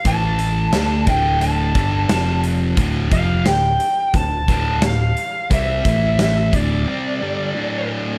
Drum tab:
HH |xxxxxxxx|xxxxxxxx|xxxx----|
SD |--o---o-|--o---o-|--o-----|
BD |o--o-o--|oo--oo--|oo-o----|